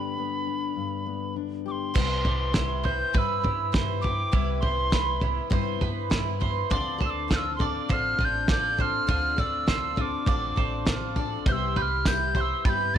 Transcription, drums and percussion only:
1.96 kick medium
1.96 floor tom medium
1.96 crash medium
2.25 floor tom medium
2.54 kick medium
2.54 snare medium
2.54 floor tom medium
2.85 floor tom medium
3.15 kick medium
3.15 floor tom medium
3.45 floor tom medium
3.74 kick medium
3.74 snare medium
3.74 floor tom medium
4.04 floor tom medium
4.33 kick medium
4.33 floor tom medium
4.63 floor tom medium
4.92 kick medium
4.92 snare medium
4.92 floor tom medium
5.21 floor tom medium
5.51 kick medium
5.51 floor tom medium
5.81 floor tom medium
6.11 kick medium
6.11 snare loud
6.11 floor tom medium
6.42 floor tom medium
6.71 kick medium
6.71 floor tom medium
7.01 floor tom medium
7.31 kick medium
7.31 snare medium
7.31 floor tom medium
7.60 floor tom medium
7.89 kick medium
7.89 floor tom medium
8.19 floor tom medium
8.48 kick medium
8.48 snare medium
8.48 floor tom medium
8.79 floor tom medium
9.09 kick medium
9.09 floor tom medium
9.38 floor tom medium
9.68 kick medium
9.68 snare medium
9.68 floor tom medium
9.97 floor tom medium
10.26 kick medium
10.26 floor tom medium
10.57 floor tom medium
10.87 kick medium
10.87 snare medium
10.87 floor tom medium
11.16 floor tom medium
11.46 kick loud
11.46 floor tom medium
11.76 floor tom medium
12.05 kick medium
12.05 snare medium
12.05 floor tom medium
12.05 tambourine medium
12.35 floor tom medium
12.65 kick medium
12.65 floor tom medium

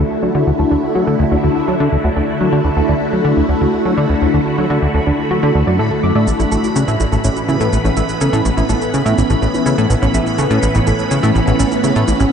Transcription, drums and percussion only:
6.27 shaker medium
6.40 shaker soft
6.52 shaker medium
6.64 low bongo soft
6.64 shaker soft
6.76 shaker medium
6.88 shaker soft
7.00 low bongo medium
7.00 shaker medium
7.12 shaker soft
7.24 shaker medium
7.36 shaker soft
7.49 low bongo soft
7.49 shaker soft
7.60 shaker soft
7.73 shaker medium
7.85 low bongo medium
7.85 shaker soft
7.97 shaker medium
8.09 shaker soft
8.21 shaker medium
8.33 low bongo soft
8.33 shaker soft
8.45 shaker medium
8.57 shaker soft
8.69 low bongo medium
8.69 shaker medium
8.82 shaker soft
8.94 shaker medium
9.06 shaker soft
9.18 low bongo soft
9.18 shaker medium
9.30 shaker soft
9.42 shaker soft
9.54 low bongo medium
9.54 shaker soft
9.66 shaker medium
9.78 shaker soft
9.90 shaker medium
10.03 low bongo soft
10.03 shaker soft
10.14 shaker medium
10.26 shaker soft
10.38 low bongo medium
10.38 shaker medium
10.51 shaker soft
10.63 shaker medium
10.75 shaker soft
10.87 low bongo soft
10.87 shaker medium
10.99 shaker soft
11.11 shaker medium
11.23 low bongo medium
11.23 shaker soft
11.35 shaker soft
11.47 shaker soft
11.59 shaker medium
11.72 low bongo soft
11.72 shaker soft
11.84 shaker medium
11.96 shaker soft
12.08 low bongo medium
12.08 shaker medium
12.20 shaker soft

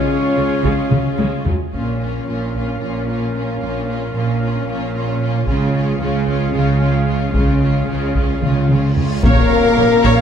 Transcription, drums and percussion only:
0.64 taiko medium
0.91 taiko mid medium
1.19 taiko high medium
1.46 taiko low medium
1.74 taiko soft
2.54 taiko soft
5.47 taiko medium
6.27 taiko soft
7.34 taiko medium
8.15 taiko medium
8.42 taiko mid medium
8.69 taiko mid medium
8.96 taiko low medium
9.23 taiko loud
9.23 tam-tam medium
10.04 taiko medium

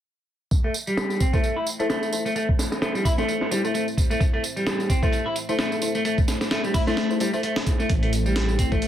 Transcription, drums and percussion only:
0.51 kick loud
0.51 closed hi-hat medium
0.51 tambourine soft
0.64 closed hi-hat soft
0.74 closed hi-hat medium
0.74 tambourine medium
0.87 tambourine soft
0.97 snare loud
0.97 closed hi-hat medium
0.97 tambourine soft
1.10 tambourine soft
1.20 kick medium
1.20 closed hi-hat medium
1.20 tambourine medium
1.33 kick medium
1.33 tambourine soft
1.44 closed hi-hat medium
1.44 tambourine soft
1.67 closed hi-hat medium
1.67 tambourine medium
1.80 tambourine soft
1.90 snare loud
1.90 closed hi-hat medium
1.90 tambourine soft
2.03 tambourine soft
2.13 closed hi-hat medium
2.13 tambourine medium
2.26 tambourine soft
2.36 closed hi-hat medium
2.36 tambourine soft
2.49 kick medium
2.59 snare soft
2.59 closed hi-hat medium
2.59 tambourine medium
2.72 snare soft
2.72 tambourine soft
2.82 snare loud
2.82 closed hi-hat medium
2.82 tambourine soft
2.95 tambourine soft
3.05 kick medium
3.05 open hi-hat medium
3.05 tambourine medium
3.18 snare soft
3.18 tambourine soft
3.28 closed hi-hat medium
3.28 tambourine soft
3.41 snare soft
3.51 closed hi-hat medium
3.51 tambourine medium
3.65 tambourine soft
3.74 closed hi-hat medium
3.74 tambourine soft
3.88 tambourine soft
3.97 kick medium
3.97 closed hi-hat medium
3.97 tambourine medium
4.11 tambourine soft
4.21 kick loud
4.21 closed hi-hat medium
4.21 tambourine soft
4.34 closed hi-hat soft
4.44 closed hi-hat medium
4.44 tambourine medium
4.57 tambourine soft
4.67 snare loud
4.67 closed hi-hat medium
4.67 tambourine soft
4.80 tambourine soft
4.90 kick medium
4.90 closed hi-hat medium
4.90 tambourine medium
5.03 kick medium
5.03 tambourine soft
5.13 closed hi-hat medium
5.13 tambourine soft
5.36 closed hi-hat medium
5.36 tambourine medium
5.49 tambourine soft
5.59 snare loud
5.59 closed hi-hat medium
5.59 tambourine soft
5.72 tambourine soft
5.82 closed hi-hat medium
5.82 tambourine medium
5.95 tambourine soft
6.05 closed hi-hat medium
6.05 tambourine soft
6.18 kick medium
6.18 tambourine soft
6.28 snare soft
6.28 closed hi-hat medium
6.28 tambourine medium
6.41 snare soft
6.41 tambourine soft
6.51 snare loud
6.51 closed hi-hat medium
6.51 tambourine soft
6.64 tambourine soft
6.74 kick medium
6.74 open hi-hat medium
6.74 tambourine medium
6.87 snare soft
6.87 tambourine soft
6.97 snare loud
6.97 closed hi-hat medium
6.97 tambourine soft
7.11 tambourine soft
7.20 closed hi-hat medium
7.20 tambourine medium
7.33 tambourine soft
7.43 closed hi-hat medium
7.43 tambourine soft
7.56 snare loud
7.56 tambourine soft
7.66 kick medium
7.66 closed hi-hat medium
7.66 tambourine medium
7.80 tambourine soft
7.90 kick loud
7.90 closed hi-hat medium
7.90 tambourine soft
8.03 closed hi-hat soft
8.13 closed hi-hat medium
8.13 tambourine medium
8.26 tambourine soft
8.36 snare loud
8.36 closed hi-hat medium
8.36 tambourine soft
8.49 tambourine soft
8.59 kick medium
8.59 closed hi-hat medium
8.59 tambourine medium
8.72 kick medium
8.72 tambourine soft
8.82 closed hi-hat medium
8.82 tambourine soft

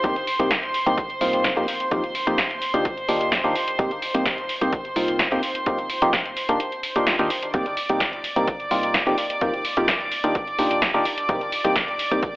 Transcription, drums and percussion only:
0.04 kick loud
0.04 closed hi-hat soft
0.16 closed hi-hat soft
0.27 open hi-hat loud
0.40 closed hi-hat soft
0.51 kick loud
0.51 snare loud
0.51 closed hi-hat soft
0.63 closed hi-hat soft
0.74 open hi-hat loud
0.86 closed hi-hat soft
0.98 kick loud
0.98 closed hi-hat soft
1.10 closed hi-hat soft
1.21 open hi-hat loud
1.33 closed hi-hat soft
1.44 kick loud
1.44 snare loud
1.44 closed hi-hat soft
1.57 closed hi-hat soft
1.68 open hi-hat loud
1.80 closed hi-hat soft
1.91 kick loud
1.91 closed hi-hat soft
2.04 closed hi-hat soft
2.15 open hi-hat loud
2.27 closed hi-hat medium
2.38 kick loud
2.38 snare loud
2.38 closed hi-hat medium
2.51 closed hi-hat soft
2.62 open hi-hat loud
2.74 closed hi-hat soft
2.85 kick loud
2.85 closed hi-hat medium
2.97 closed hi-hat soft
3.09 open hi-hat loud
3.21 closed hi-hat medium
3.32 kick loud
3.32 snare loud
3.32 closed hi-hat medium
3.44 closed hi-hat soft
3.56 open hi-hat loud
3.68 closed hi-hat medium
3.79 kick loud
3.79 closed hi-hat medium
3.91 closed hi-hat soft
4.02 open hi-hat loud
4.15 closed hi-hat medium
4.26 kick loud
4.26 snare loud
4.26 closed hi-hat medium
4.38 closed hi-hat soft
4.49 open hi-hat medium
4.61 closed hi-hat medium
4.73 kick loud
4.73 closed hi-hat medium
4.85 closed hi-hat soft
4.96 open hi-hat loud
5.08 closed hi-hat medium
5.19 kick medium
5.19 snare loud
5.19 closed hi-hat medium
5.32 closed hi-hat soft
5.43 open hi-hat loud
5.55 closed hi-hat medium
5.66 kick loud
5.66 closed hi-hat medium
5.78 closed hi-hat soft
5.90 open hi-hat loud
6.02 closed hi-hat medium
6.13 kick loud
6.13 snare loud
6.13 closed hi-hat medium
6.25 closed hi-hat soft
6.37 open hi-hat loud
6.49 closed hi-hat medium
6.60 closed hi-hat medium
6.72 closed hi-hat soft
6.83 open hi-hat loud
6.96 closed hi-hat medium
7.07 snare loud
7.07 closed hi-hat medium
7.19 closed hi-hat soft
7.30 open hi-hat loud
7.43 closed hi-hat medium
7.54 kick loud
7.54 closed hi-hat medium
7.66 closed hi-hat soft
7.77 open hi-hat loud
7.89 closed hi-hat medium
8.00 kick loud
8.00 snare loud
8.00 closed hi-hat medium
8.13 closed hi-hat soft
8.24 open hi-hat loud
8.36 closed hi-hat medium
8.48 kick loud
8.48 closed hi-hat medium
8.60 closed hi-hat soft
8.71 open hi-hat loud
8.83 closed hi-hat medium
8.94 kick loud
8.94 snare loud
8.94 closed hi-hat medium
9.07 closed hi-hat soft
9.18 open hi-hat loud
9.30 closed hi-hat medium
9.41 kick loud
9.41 closed hi-hat medium
9.54 closed hi-hat soft
9.65 open hi-hat loud
9.77 closed hi-hat medium
9.88 kick loud
9.88 snare loud
9.88 closed hi-hat medium
10.00 closed hi-hat soft
10.12 open hi-hat loud
10.24 closed hi-hat medium
10.35 kick loud
10.35 closed hi-hat medium
10.47 closed hi-hat soft
10.59 open hi-hat loud
10.71 closed hi-hat medium
10.82 kick loud
10.82 snare loud
10.82 closed hi-hat medium
10.94 closed hi-hat soft
11.05 open hi-hat loud
11.18 closed hi-hat medium
11.29 kick loud
11.29 closed hi-hat soft
11.41 closed hi-hat soft
11.52 open hi-hat loud
11.65 closed hi-hat soft
11.76 kick loud
11.76 snare loud
11.76 closed hi-hat soft
11.88 closed hi-hat soft
11.99 open hi-hat loud
12.12 closed hi-hat soft
12.23 kick loud
12.23 closed hi-hat medium

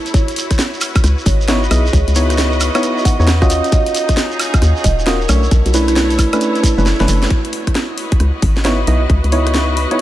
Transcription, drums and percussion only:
0.06 closed hi-hat soft
0.06 shekere soft
0.14 kick loud
0.14 closed hi-hat medium
0.14 shekere medium
0.28 closed hi-hat medium
0.28 shekere soft
0.36 open hi-hat loud
0.36 shekere medium
0.51 kick medium
0.51 cross-stick medium
0.51 closed hi-hat medium
0.51 shekere soft
0.59 snare loud
0.59 shekere medium
0.74 shekere soft
0.81 open hi-hat loud
0.81 high woodblock medium
0.81 shekere medium
0.95 kick loud
0.95 closed hi-hat medium
0.95 high woodblock medium
0.95 shekere soft
1.04 cross-stick medium
1.04 closed hi-hat medium
1.04 shekere medium
1.18 shekere soft
1.26 kick loud
1.26 open hi-hat loud
1.26 shekere medium
1.41 shekere soft
1.48 snare loud
1.48 shekere medium
1.63 shekere soft
1.71 open hi-hat loud
1.71 high woodblock medium
1.71 shekere medium
1.86 shekere soft
1.93 kick loud
1.93 closed hi-hat medium
1.93 shekere medium
2.08 closed hi-hat medium
2.08 shekere soft
2.15 open hi-hat loud
2.15 shekere medium
2.30 cross-stick medium
2.30 closed hi-hat medium
2.30 shekere soft
2.38 snare loud
2.38 shekere medium
2.52 shekere soft
2.61 open hi-hat loud
2.61 high woodblock medium
2.61 shekere medium
2.75 closed hi-hat medium
2.75 high woodblock medium
2.75 shekere soft
2.83 closed hi-hat medium
2.83 shekere medium
2.98 shekere soft
3.05 kick loud
3.05 open hi-hat loud
3.05 shekere medium
3.21 shekere soft
3.27 snare loud
3.27 shekere soft
3.42 kick loud
3.42 cross-stick medium
3.42 shekere soft
3.50 cross-stick soft
3.50 open hi-hat loud
3.50 shekere medium
3.64 closed hi-hat soft
3.64 shekere soft
3.72 kick loud
3.72 closed hi-hat medium
3.72 shekere medium
3.86 closed hi-hat medium
3.86 shekere soft
3.95 open hi-hat loud
3.95 shekere medium
4.09 kick medium
4.09 cross-stick medium
4.09 closed hi-hat medium
4.09 shekere soft
4.17 snare loud
4.17 shekere medium
4.31 shekere soft
4.39 open hi-hat loud
4.39 high woodblock medium
4.39 shekere medium
4.54 kick loud
4.54 closed hi-hat medium
4.54 high woodblock medium
4.54 shekere soft
4.62 cross-stick medium
4.62 closed hi-hat medium
4.62 shekere medium
4.76 shekere soft
4.84 kick loud
4.84 open hi-hat loud
4.84 shekere medium
4.99 shekere soft
5.07 snare loud
5.07 shekere medium
5.21 shekere soft
5.29 open hi-hat loud
5.29 high woodblock medium
5.29 shekere medium
5.43 shekere soft
5.51 kick loud
5.51 closed hi-hat medium
5.51 shekere medium
5.66 closed hi-hat medium
5.66 shekere soft
5.74 open hi-hat loud
5.74 shekere loud
5.88 cross-stick medium
5.88 closed hi-hat medium
5.88 shekere soft
5.96 snare loud
5.96 shekere medium
6.10 open hi-hat medium
6.10 shekere soft
6.19 kick medium
6.19 open hi-hat loud
6.19 high woodblock medium
6.19 shekere medium
6.33 closed hi-hat medium
6.33 high woodblock medium
6.33 shekere soft
6.41 closed hi-hat medium
6.41 shekere soft
6.55 closed hi-hat soft
6.55 shekere soft
6.63 kick loud
6.63 open hi-hat loud
6.63 shekere medium
6.78 shekere soft
6.86 snare medium
6.86 shekere soft
7.00 snare medium
7.00 shekere soft
7.08 open hi-hat loud
7.08 shekere medium
7.22 snare medium
7.22 closed hi-hat soft
7.22 shekere soft
7.30 kick loud
7.30 closed hi-hat medium
7.45 closed hi-hat medium
7.53 open hi-hat loud
7.67 kick medium
7.67 cross-stick medium
7.67 closed hi-hat medium
7.75 snare loud
7.98 open hi-hat medium
8.12 kick loud
8.12 closed hi-hat medium
8.20 cross-stick medium
8.20 closed hi-hat medium
8.42 kick loud
8.42 open hi-hat loud
8.57 snare medium
8.65 snare loud
8.87 open hi-hat medium
9.10 kick loud
9.10 closed hi-hat medium
9.24 closed hi-hat soft
9.32 open hi-hat loud
9.47 cross-stick medium
9.47 closed hi-hat medium
9.54 snare loud
9.77 open hi-hat medium
9.91 closed hi-hat medium

